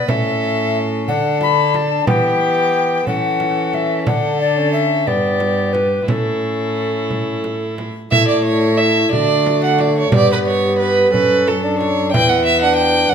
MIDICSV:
0, 0, Header, 1, 6, 480
1, 0, Start_track
1, 0, Tempo, 664452
1, 62, Time_signature, 6, 3, 24, 8
1, 2943, Tempo, 675676
1, 5823, Tempo, 666667
1, 9435, End_track
2, 0, Start_track
2, 0, Title_t, "Recorder"
2, 0, Program_c, 0, 74
2, 58, Note_on_c, 0, 76, 82
2, 567, Note_off_c, 0, 76, 0
2, 782, Note_on_c, 0, 78, 80
2, 1004, Note_off_c, 0, 78, 0
2, 1029, Note_on_c, 0, 83, 71
2, 1272, Note_on_c, 0, 81, 69
2, 1283, Note_off_c, 0, 83, 0
2, 1499, Note_off_c, 0, 81, 0
2, 1504, Note_on_c, 0, 79, 89
2, 2207, Note_off_c, 0, 79, 0
2, 2221, Note_on_c, 0, 78, 72
2, 2705, Note_on_c, 0, 76, 78
2, 2716, Note_off_c, 0, 78, 0
2, 2944, Note_off_c, 0, 76, 0
2, 2948, Note_on_c, 0, 78, 72
2, 3178, Note_off_c, 0, 78, 0
2, 3181, Note_on_c, 0, 74, 72
2, 3402, Note_off_c, 0, 74, 0
2, 3406, Note_on_c, 0, 76, 72
2, 3653, Note_on_c, 0, 74, 71
2, 3664, Note_off_c, 0, 76, 0
2, 4119, Note_on_c, 0, 71, 58
2, 4129, Note_off_c, 0, 74, 0
2, 4368, Note_off_c, 0, 71, 0
2, 4371, Note_on_c, 0, 69, 67
2, 5554, Note_off_c, 0, 69, 0
2, 5810, Note_on_c, 0, 64, 55
2, 6538, Note_on_c, 0, 66, 59
2, 6549, Note_off_c, 0, 64, 0
2, 7243, Note_off_c, 0, 66, 0
2, 7248, Note_on_c, 0, 67, 60
2, 7969, Note_on_c, 0, 69, 58
2, 7980, Note_off_c, 0, 67, 0
2, 8697, Note_off_c, 0, 69, 0
2, 8707, Note_on_c, 0, 71, 68
2, 9432, Note_off_c, 0, 71, 0
2, 9435, End_track
3, 0, Start_track
3, 0, Title_t, "Violin"
3, 0, Program_c, 1, 40
3, 0, Note_on_c, 1, 71, 66
3, 67, Note_on_c, 1, 69, 64
3, 78, Note_off_c, 1, 71, 0
3, 780, Note_off_c, 1, 69, 0
3, 784, Note_on_c, 1, 69, 55
3, 1486, Note_off_c, 1, 69, 0
3, 1509, Note_on_c, 1, 67, 68
3, 2209, Note_off_c, 1, 67, 0
3, 2219, Note_on_c, 1, 69, 54
3, 2927, Note_off_c, 1, 69, 0
3, 2939, Note_on_c, 1, 69, 64
3, 3651, Note_on_c, 1, 67, 60
3, 3662, Note_off_c, 1, 69, 0
3, 4365, Note_off_c, 1, 67, 0
3, 4369, Note_on_c, 1, 64, 58
3, 5647, Note_off_c, 1, 64, 0
3, 5813, Note_on_c, 1, 76, 94
3, 5928, Note_off_c, 1, 76, 0
3, 5934, Note_on_c, 1, 74, 70
3, 6048, Note_off_c, 1, 74, 0
3, 6053, Note_on_c, 1, 73, 73
3, 6287, Note_on_c, 1, 76, 76
3, 6298, Note_off_c, 1, 73, 0
3, 6530, Note_off_c, 1, 76, 0
3, 6535, Note_on_c, 1, 74, 86
3, 6892, Note_off_c, 1, 74, 0
3, 6912, Note_on_c, 1, 78, 67
3, 7030, Note_on_c, 1, 74, 70
3, 7041, Note_off_c, 1, 78, 0
3, 7147, Note_off_c, 1, 74, 0
3, 7161, Note_on_c, 1, 73, 71
3, 7270, Note_off_c, 1, 73, 0
3, 7276, Note_on_c, 1, 74, 94
3, 7387, Note_off_c, 1, 74, 0
3, 7403, Note_on_c, 1, 71, 73
3, 7447, Note_off_c, 1, 71, 0
3, 7505, Note_on_c, 1, 73, 76
3, 7733, Note_off_c, 1, 73, 0
3, 7737, Note_on_c, 1, 71, 80
3, 7976, Note_off_c, 1, 71, 0
3, 7984, Note_on_c, 1, 71, 85
3, 8233, Note_on_c, 1, 69, 71
3, 8243, Note_off_c, 1, 71, 0
3, 8456, Note_off_c, 1, 69, 0
3, 8460, Note_on_c, 1, 73, 75
3, 8694, Note_off_c, 1, 73, 0
3, 8698, Note_on_c, 1, 79, 96
3, 8822, Note_on_c, 1, 78, 80
3, 8832, Note_off_c, 1, 79, 0
3, 8934, Note_off_c, 1, 78, 0
3, 8939, Note_on_c, 1, 76, 81
3, 9049, Note_off_c, 1, 76, 0
3, 9053, Note_on_c, 1, 78, 82
3, 9154, Note_off_c, 1, 78, 0
3, 9158, Note_on_c, 1, 79, 90
3, 9398, Note_on_c, 1, 78, 92
3, 9409, Note_off_c, 1, 79, 0
3, 9435, Note_off_c, 1, 78, 0
3, 9435, End_track
4, 0, Start_track
4, 0, Title_t, "Bassoon"
4, 0, Program_c, 2, 70
4, 0, Note_on_c, 2, 59, 54
4, 63, Note_on_c, 2, 61, 64
4, 74, Note_off_c, 2, 59, 0
4, 788, Note_on_c, 2, 62, 66
4, 799, Note_off_c, 2, 61, 0
4, 1493, Note_off_c, 2, 62, 0
4, 1497, Note_on_c, 2, 59, 66
4, 2220, Note_on_c, 2, 61, 59
4, 2231, Note_off_c, 2, 59, 0
4, 2940, Note_on_c, 2, 62, 58
4, 2951, Note_off_c, 2, 61, 0
4, 3295, Note_on_c, 2, 61, 53
4, 3306, Note_off_c, 2, 62, 0
4, 3650, Note_off_c, 2, 61, 0
4, 3655, Note_on_c, 2, 59, 56
4, 4163, Note_off_c, 2, 59, 0
4, 4369, Note_on_c, 2, 61, 54
4, 5558, Note_off_c, 2, 61, 0
4, 5818, Note_on_c, 2, 57, 64
4, 6513, Note_off_c, 2, 57, 0
4, 6545, Note_on_c, 2, 57, 61
4, 7273, Note_on_c, 2, 59, 66
4, 7284, Note_off_c, 2, 57, 0
4, 7981, Note_on_c, 2, 61, 60
4, 7992, Note_off_c, 2, 59, 0
4, 8353, Note_on_c, 2, 62, 61
4, 8364, Note_off_c, 2, 61, 0
4, 8704, Note_off_c, 2, 62, 0
4, 8708, Note_on_c, 2, 64, 61
4, 9065, Note_on_c, 2, 62, 58
4, 9076, Note_off_c, 2, 64, 0
4, 9425, Note_off_c, 2, 62, 0
4, 9435, End_track
5, 0, Start_track
5, 0, Title_t, "Cello"
5, 0, Program_c, 3, 42
5, 61, Note_on_c, 3, 45, 62
5, 783, Note_on_c, 3, 50, 57
5, 794, Note_off_c, 3, 45, 0
5, 1491, Note_off_c, 3, 50, 0
5, 1496, Note_on_c, 3, 52, 54
5, 2203, Note_off_c, 3, 52, 0
5, 2214, Note_on_c, 3, 52, 54
5, 2937, Note_on_c, 3, 50, 63
5, 2948, Note_off_c, 3, 52, 0
5, 3653, Note_on_c, 3, 43, 51
5, 3663, Note_off_c, 3, 50, 0
5, 4364, Note_off_c, 3, 43, 0
5, 4368, Note_on_c, 3, 45, 50
5, 5647, Note_off_c, 3, 45, 0
5, 5819, Note_on_c, 3, 45, 59
5, 6513, Note_off_c, 3, 45, 0
5, 6546, Note_on_c, 3, 50, 61
5, 7251, Note_off_c, 3, 50, 0
5, 7259, Note_on_c, 3, 43, 55
5, 7967, Note_off_c, 3, 43, 0
5, 7981, Note_on_c, 3, 42, 52
5, 8700, Note_on_c, 3, 40, 63
5, 8711, Note_off_c, 3, 42, 0
5, 9411, Note_off_c, 3, 40, 0
5, 9435, End_track
6, 0, Start_track
6, 0, Title_t, "Frame drum"
6, 61, Note_on_c, 9, 64, 69
6, 133, Note_off_c, 9, 64, 0
6, 781, Note_on_c, 9, 64, 47
6, 853, Note_off_c, 9, 64, 0
6, 1017, Note_on_c, 9, 64, 52
6, 1090, Note_off_c, 9, 64, 0
6, 1259, Note_on_c, 9, 64, 51
6, 1331, Note_off_c, 9, 64, 0
6, 1497, Note_on_c, 9, 64, 79
6, 1570, Note_off_c, 9, 64, 0
6, 2217, Note_on_c, 9, 64, 45
6, 2290, Note_off_c, 9, 64, 0
6, 2457, Note_on_c, 9, 64, 50
6, 2529, Note_off_c, 9, 64, 0
6, 2697, Note_on_c, 9, 64, 44
6, 2770, Note_off_c, 9, 64, 0
6, 2937, Note_on_c, 9, 64, 74
6, 3008, Note_off_c, 9, 64, 0
6, 3653, Note_on_c, 9, 64, 42
6, 3724, Note_off_c, 9, 64, 0
6, 3887, Note_on_c, 9, 64, 51
6, 3958, Note_off_c, 9, 64, 0
6, 4131, Note_on_c, 9, 64, 48
6, 4202, Note_off_c, 9, 64, 0
6, 4370, Note_on_c, 9, 64, 67
6, 4441, Note_off_c, 9, 64, 0
6, 5096, Note_on_c, 9, 64, 45
6, 5167, Note_off_c, 9, 64, 0
6, 5335, Note_on_c, 9, 64, 48
6, 5406, Note_off_c, 9, 64, 0
6, 5578, Note_on_c, 9, 64, 48
6, 5649, Note_off_c, 9, 64, 0
6, 5817, Note_on_c, 9, 64, 74
6, 5889, Note_off_c, 9, 64, 0
6, 6542, Note_on_c, 9, 64, 48
6, 6614, Note_off_c, 9, 64, 0
6, 6784, Note_on_c, 9, 64, 56
6, 6856, Note_off_c, 9, 64, 0
6, 7017, Note_on_c, 9, 64, 50
6, 7089, Note_off_c, 9, 64, 0
6, 7258, Note_on_c, 9, 64, 75
6, 7330, Note_off_c, 9, 64, 0
6, 7991, Note_on_c, 9, 64, 51
6, 8063, Note_off_c, 9, 64, 0
6, 8234, Note_on_c, 9, 64, 56
6, 8306, Note_off_c, 9, 64, 0
6, 8472, Note_on_c, 9, 64, 48
6, 8544, Note_off_c, 9, 64, 0
6, 8713, Note_on_c, 9, 64, 74
6, 8785, Note_off_c, 9, 64, 0
6, 9435, End_track
0, 0, End_of_file